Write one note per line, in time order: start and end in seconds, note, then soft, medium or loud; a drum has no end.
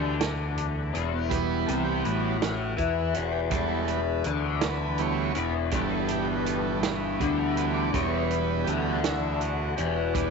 0.00 0.91 D2 medium
0.00 0.52 E2 medium
0.00 3.62 B2 medium
0.00 0.93 D3 loud
0.00 1.77 E3 medium
0.00 1.13 B3 medium
0.00 0.16 G4 medium
0.21 snare loud
0.21 closed hi-hat loud
0.53 3.00 E2 medium
0.58 closed hi-hat medium
0.94 1.64 E1 medium
0.94 1.67 E2 loud
0.94 closed hi-hat medium
1.13 6.83 B3 medium
1.29 2.37 E3 medium
1.29 2.37 G3 medium
1.29 2.38 B3 medium
1.29 1.68 B4 loud
1.29 kick loud
1.29 closed hi-hat medium
1.66 2.03 C2 medium
1.66 2.05 C3 loud
1.66 1.75 A4 loud
1.66 closed hi-hat medium
1.77 2.39 E3 medium
1.85 2.03 G4 medium
2.03 2.75 A1 medium
2.03 2.77 A2 loud
2.03 2.74 F#4 medium
2.03 closed hi-hat medium
2.39 4.23 E3 medium
2.39 snare loud
2.39 closed hi-hat medium
2.77 3.13 E2 loud
2.77 3.14 E3 loud
2.77 3.16 E4 medium
2.77 kick medium
2.77 closed hi-hat medium
3.01 5.48 E2 medium
3.13 3.51 E1 medium
3.13 3.50 E2 loud
3.13 3.33 F#4 medium
3.13 closed hi-hat medium
3.32 3.41 G4 medium
3.50 4.22 E1 loud
3.50 4.24 E2 loud
3.50 4.00 E3 medium
3.50 4.00 G3 medium
3.50 4.01 B3 medium
3.50 3.90 A4 medium
3.50 kick loud
3.50 closed hi-hat medium
3.63 6.09 B2 medium
3.88 4.23 B4 medium
3.88 closed hi-hat medium
4.23 5.33 D2 loud
4.23 5.35 D3 loud
4.23 4.85 E3 medium
4.23 closed hi-hat medium
4.61 5.01 B4 loud
4.61 snare loud
4.61 closed hi-hat loud
4.85 6.72 E3 medium
4.98 5.33 E3 medium
4.98 5.33 G3 soft
4.98 5.33 B3 medium
4.98 5.38 C#5 loud
4.98 closed hi-hat medium
5.35 5.71 E1 medium
5.35 5.72 E2 loud
5.35 5.54 B4 loud
5.35 closed hi-hat medium
5.48 7.93 E2 medium
5.71 7.16 G1 loud
5.71 7.19 G2 loud
5.71 7.90 E3 medium
5.71 7.91 G3 medium
5.71 7.91 B3 medium
5.71 6.12 A4 medium
5.71 kick loud
5.71 closed hi-hat medium
6.08 8.55 B2 medium
6.08 6.28 G4 medium
6.08 closed hi-hat medium
6.45 6.80 A4 medium
6.45 closed hi-hat medium
6.72 7.33 E3 medium
6.83 snare loud
6.83 closed hi-hat loud
7.20 7.90 D2 loud
7.20 7.93 D3 loud
7.20 kick medium
7.20 closed hi-hat medium
7.33 9.17 E3 medium
7.57 7.66 B4 loud
7.57 closed hi-hat medium
7.74 7.94 D5 loud
7.93 8.64 E1 loud
7.93 10.30 E2 medium
7.93 8.66 E2 loud
7.93 9.00 E3 medium
7.93 9.01 G3 soft
7.93 9.00 B3 medium
7.93 8.32 C#5 loud
7.93 kick loud
7.93 closed hi-hat medium
8.30 8.68 B4 medium
8.30 closed hi-hat medium
8.55 10.30 B2 medium
8.64 9.74 D2 medium
8.64 9.76 D3 loud
8.64 8.73 G4 medium
8.64 closed hi-hat medium
8.85 9.05 F#4 medium
9.04 9.42 E4 loud
9.04 snare loud
9.04 closed hi-hat medium
9.17 9.79 E3 medium
9.40 9.75 F#4 medium
9.40 closed hi-hat medium
9.77 10.30 E1 medium
9.77 10.30 E2 loud
9.77 10.30 E3 medium
9.77 9.96 G4 medium
9.77 closed hi-hat medium
9.96 10.15 F#4 medium
10.14 10.30 E3 medium
10.14 10.30 G3 medium
10.14 10.30 B3 medium
10.14 10.30 D4 medium
10.14 kick loud
10.14 closed hi-hat medium